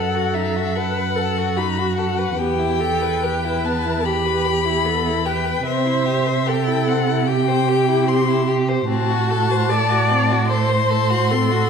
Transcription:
Already playing: cello F#2, violin A4 F#5, viola A4
0.14 violin F#4
0.34 violin D#4 E5
0.56 violin F#4
0.75 violin A4 F#5, viola B4
0.97 violin B4
1.16 viola A4, violin A4
1.38 violin F#4
1.56 violin D#4 B5, viola F#4
1.78 violin F#4
1.97 violin A4 F#5
2.18 violin B4
2.37 cello E2, violin B3 G5, viola G4
2.58 violin E4
2.80 violin G4, viola A4
3.02 violin B4
3.23 violin G4, viola B4
3.44 violin E4
3.65 violin B3 A5
3.85 violin E4
4.04 violin G4 B5, viola G4
4.25 violin B4
4.45 violin G4
4.65 violin E4
4.85 violin B3, viola A4
5.06 violin E4
5.25 violin G4 G5, viola B4
5.46 violin B4
5.65 cello C3, violin C4 E5, viola C5
5.85 violin E4
6.06 violin G4
6.27 violin C5
6.46 violin G4 G5, viola A4
6.67 violin E4
6.88 violin C4 F#5
7.08 violin E4
7.27 viola G4, violin G4 G5
7.47 violin C5
7.68 violin G4
7.88 violin E4
8.08 violin C4 C6
8.28 violin E4
8.48 violin G4
8.69 violin C5
8.88 cello A2, violin C4 A5, viola F#4
9.10 violin F#4
9.30 violin A4
9.51 violin C5
9.69 violin A4, viola D5
9.90 violin F#4
10.09 violin C4
10.30 violin F#4
10.49 violin A4 C6, viola C5
10.69 violin C5
10.90 violin A4
11.10 violin F#4
11.30 violin C4, viola A4
11.51 violin F#4

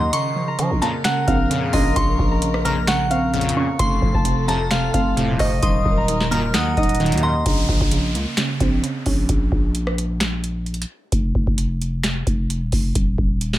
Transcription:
Already playing: 808-style bass D#2, synth pluck D#3 A#3 D#4 D#5, string section F#3 D#4 A#4, harp D#5 F#5 A#5 C6, synth bell A#5
0.13 synth pluck C#3, string section C#3 A#4, harp C6, synth bell C#6, closed hi-hat
0.36 synth pluck F3
0.48 harp A#5
0.59 synth pluck C#3, 808-style bass F3, closed hi-hat
0.71 808-style bass A#1
0.82 analog polysynth F2 A#2 C#3, synth pluck A#3, synth bell A5, harp A#5, closed hi-hat
1.04 synth pluck C#3, harp F#5, synth bell A#5, finger snap, snare, closed hi-hat
1.27 808-style bass A#1, synth pluck C4, harp F5, kick, closed hi-hat
1.50 analog polysynth F2 A#2 C#3, synth pluck C#3, closed hi-hat
1.73 808-style bass A#1, synth pluck C#4, harp D#5, synth bell C6, kick, open hi-hat
1.96 808-style bass A#1, synth pluck C#3, harp C6, synth bell C#6, kick, closed hi-hat
2.19 808-style bass A#1, synth pluck F3, kick
2.31 harp A#5
2.42 synth pluck C#3, closed hi-hat
2.54 cross-stick
2.65 analog polysynth F2 A#2 C#3, synth pluck A#3, harp A#5, synth bell F6, closed hi-hat
2.87 synth pluck C#3, harp F#5, synth bell C#6, finger snap, snare, closed hi-hat
3.10 synth pluck C4, harp F5, closed hi-hat
3.34 analog polysynth F2 A#2 C#3, synth pluck C#3, closed hi-hat
3.41 closed hi-hat
3.49 closed hi-hat
3.56 synth pluck C#4, harp C#6
3.79 808-style bass F1, synth pluck C3, string section F3 A4, harp C6, synth bell C6, kick, closed hi-hat
4.02 808-style bass F1, synth pluck F3, kick
4.14 808-style bass F1, harp A5, kick
4.24 synth pluck C3, closed hi-hat
4.48 analog polysynth F2 A2 C3, synth pluck A3, harp A5, synth bell A#5, closed hi-hat
4.71 synth pluck C3, harp F5, synth bell C6, finger snap, snare, closed hi-hat
4.94 808-style bass F1, synth pluck C4, harp F5, kick, closed hi-hat
5.17 analog polysynth F2 A2 C3, synth pluck C3, closed hi-hat
5.29 808-style bass D#1
5.39 808-style bass F1, synth pluck C5, harp D#5, synth bell C#6, kick, open hi-hat
5.62 808-style bass D#1, synth pluck D#3, string section F#3 D#4 A#4, harp C6, synth bell D#6, kick, closed hi-hat
5.85 808-style bass D#1, synth pluck F#3, kick
5.97 harp A#5
6.08 synth pluck D#3, closed hi-hat
6.21 snare
6.31 analog polysynth F#2 A#2 D#3, synth pluck A#3, harp A#5, synth bell F6, closed hi-hat
6.54 808-style bass D#2, synth pluck D#3, harp F#5, synth bell D#6, finger snap, snare, closed hi-hat
6.77 808-style bass D#1, synth pluck D#4, harp D#5, kick, closed hi-hat
6.83 closed hi-hat
6.89 closed hi-hat
6.95 closed hi-hat
7.00 analog polysynth F#2 A#2 D#3, synth pluck D#3, closed hi-hat
7.06 closed hi-hat
7.12 808-style bass D#2, closed hi-hat
7.18 closed hi-hat
7.23 synth pluck D#5, synth bell A#5, harp C6
7.46 808-style bass A#1, synth pluck C#3, kick, closed hi-hat, downlifter
7.69 808-style bass A#1, synth pluck F3, kick
7.81 808-style bass A#1, kick
7.91 synth pluck C#3, closed hi-hat
8.15 808-style bass C#2, synth pluck A#3, closed hi-hat
8.37 synth pluck C#3, finger snap, snare, closed hi-hat
8.60 808-style bass A#1, synth pluck C4, kick, closed hi-hat
8.83 synth pluck C#3, closed hi-hat
9.06 808-style bass A#1, synth pluck C#4, kick, open hi-hat
9.29 808-style bass A#1, kick, closed hi-hat
9.52 808-style bass A#1, kick
9.75 closed hi-hat
9.87 cross-stick
9.98 closed hi-hat
10.20 finger snap, snare, closed hi-hat
10.44 closed hi-hat
10.66 closed hi-hat
10.74 closed hi-hat
10.82 closed hi-hat
11.12 808-style bass F1, kick, closed hi-hat
11.35 808-style bass F1, kick
11.47 808-style bass F1, kick
11.58 closed hi-hat
11.82 closed hi-hat
12.03 finger snap, snare, closed hi-hat
12.27 808-style bass F1, kick, closed hi-hat
12.50 closed hi-hat
12.62 808-style bass D#1
12.72 808-style bass F1, kick, open hi-hat
12.95 808-style bass D#1, kick, closed hi-hat
13.18 808-style bass D#1, kick
13.41 closed hi-hat
13.53 snare

